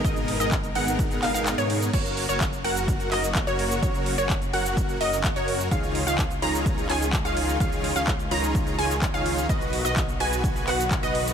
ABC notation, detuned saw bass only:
X:1
M:4/4
L:1/16
Q:1/4=127
K:F#
V:1 name="Detuned saw bass" clef=bass
G,,,3 G,,,3 G,,,4 G,,, G,,,2 G,,3 | F,,,3 F,,,3 F,,,4 F,,,3 F,,,3 | F,,,3 F,,,3 F,,,4 F,,,3 F,,3 | C,,3 C,,3 C,,4 C,,3 C,,3 |
C,,3 C,,3 C,,4 C,,3 C,,3 | B,,,3 B,,,3 B,,,4 B,,,3 B,,,3 |]